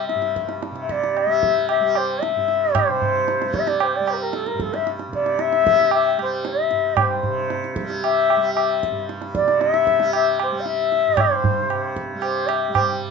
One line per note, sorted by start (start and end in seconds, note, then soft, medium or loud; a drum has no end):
0.00 0.14 G2 medium
0.00 0.71 C3 medium
0.00 1.26 G3 medium
0.07 0.58 E5 medium
0.07 tabla te medium
0.15 2.36 G2 medium
0.22 tabla te medium
0.36 tabla ke medium
0.49 tabla te medium
0.63 tabla te medium
0.71 2.89 C3 medium
0.76 tabla te soft
0.82 0.93 E5 medium
0.89 1.20 D5 medium
0.89 tabla ke medium
1.04 tabla te medium
1.17 1.69 E5 loud
1.17 tabla na medium
1.26 1.80 G3 medium
1.43 tabla ke medium
1.69 1.99 E5 medium
1.69 tabla na medium
1.80 3.44 G3 medium
1.95 2.23 C5 medium
1.95 tabla na medium
2.22 2.77 E5 medium
2.22 tabla te medium
2.36 4.53 G2 medium
2.48 tabla te soft
2.75 3.57 C5 loud
2.75 tabla na loud
2.75 tabla ge medium
2.89 5.08 C3 medium
3.02 tabla ge medium
3.28 tabla te medium
3.42 4.00 G3 medium
3.42 tabla te medium
3.54 3.70 E5 medium
3.54 tabla ke medium
3.67 3.84 D5 medium
3.67 tabla te medium
3.80 3.97 C5 medium
3.80 tabla na medium
3.96 4.12 D5 medium
4.00 5.63 G3 medium
4.07 4.14 C5 medium
4.07 tabla na medium
4.12 4.17 A#4 medium
4.12 4.24 C5 medium
4.22 4.30 A#4 medium
4.30 4.36 A#4 medium
4.30 tabla te medium
4.35 4.48 A4 medium
4.46 4.63 A#4 medium
4.46 tabla te medium
4.54 6.71 G2 medium
4.60 4.76 A4 medium
4.60 tabla ke medium
4.74 4.87 E5 medium
4.74 tabla te medium
4.87 tabla te medium
4.99 tabla te medium
5.08 7.27 C3 medium
5.13 5.42 D5 medium
5.13 tabla ke soft
5.26 tabla te medium
5.39 5.93 E5 loud
5.39 tabla te medium
5.53 tabla te medium
5.63 6.18 G3 medium
5.63 tabla ke medium
5.80 tabla te medium
5.91 6.18 E5 loud
5.91 tabla na medium
6.18 7.82 G3 medium
6.18 tabla na medium
6.22 6.50 C5 medium
6.45 7.02 E5 medium
6.45 tabla te medium
6.71 8.91 G2 medium
6.71 tabla te medium
6.97 tabla na medium
6.97 tabla ge medium
7.01 7.79 C5 medium
7.23 9.43 C3 medium
7.23 tabla ge medium
7.50 tabla te medium
7.64 tabla te medium
7.76 tabla ke medium
7.82 8.36 G3 medium
7.90 tabla te medium
8.04 8.53 E5 loud
8.04 tabla na medium
8.30 tabla na medium
8.36 9.98 G3 medium
8.55 9.04 E5 medium
8.55 tabla na medium
8.83 tabla ke medium
8.91 11.07 G2 medium
9.09 tabla te medium
9.22 tabla te medium
9.35 9.62 D5 medium
9.35 tabla ke medium
9.44 11.60 C3 medium
9.48 tabla te medium
9.61 10.14 E5 loud
9.61 tabla te medium
9.74 tabla te medium
9.87 tabla ke medium
9.98 10.52 G3 medium
9.98 tabla te medium
10.13 10.39 E5 loud
10.13 tabla na medium
10.40 10.62 C5 medium
10.40 tabla na medium
10.52 12.14 G3 medium
10.60 10.68 F5 medium
10.66 11.22 E5 medium
10.66 tabla te medium
10.92 tabla te medium
11.07 13.11 G2 medium
11.17 11.98 C5 medium
11.17 tabla na loud
11.17 tabla ge medium
11.44 tabla ge medium
11.61 13.11 C3 medium
11.70 tabla na medium
11.96 tabla ke medium
12.14 12.68 G3 medium
12.22 12.49 C5 medium
12.22 tabla na medium
12.47 12.74 E5 medium
12.47 tabla na medium
12.68 13.11 G3 medium
12.75 12.99 C5 medium
12.75 tabla na medium
12.75 tabla ge medium